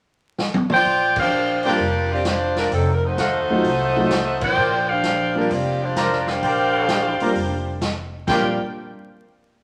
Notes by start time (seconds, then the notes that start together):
0.38 snare
0.54 high tom
0.70 F4 C5 G5, mid tom
0.74 D5
0.85 A#1, open hi-hat
1.16 D4 G4 C5 F5, kick, crash
1.63 G3 A#3 C4 D4 F4 A#4 C5 D5 G5, open hi-hat
1.68 G3 D4 F4 A#4
1.78 F1, open hi-hat
2.12 C4 F4 G4 D5
2.25 G3 D4 F4 C5, snare, closed hi-hat
2.56 G3 D4 F4 A#4, snare, open hi-hat
2.71 F1 F#3 C4 D#4 A4, open hi-hat
2.94 A#4
3.05 A3 D#4 F#4 C5
3.17 D#2 A4 D#5 F5 F#5, snare, closed hi-hat
3.50 F#3 A3 C4 D#4 F4
3.63 C2, open hi-hat
3.96 F#3 A3 C4 D#4 F4
4.10 C2, snare, closed hi-hat
4.41 F4 C5 D5 G5, kick, crash
4.57 A#1 A#4 C5 D5 G5
4.89 D4 G4 C5 F5
5.03 snare, closed hi-hat
5.35 G3 A#3 C4 D4 F4 A#4
5.50 F1 C4 F4 G4 D5, open hi-hat
5.82 G3 D4 F4 C5
5.96 A#4 C5 D5 A#5, snare, closed hi-hat
6.12 snare
6.27 D4 G4 C5 F5, snare
6.43 A#1 A#4 C5 D5 G5, open hi-hat
6.88 snare, closed hi-hat
7.20 G3 A#3 C4 D4 F4 A#4 C5 D5 A#5, muted upright bass stroke, open hi-hat
7.35 F1, open hi-hat
7.81 snare, closed hi-hat
8.27 A#1 G3 A#3 C4 D4 F4 G4 A#4 C5 D5 F5 G5, kick, snare, crash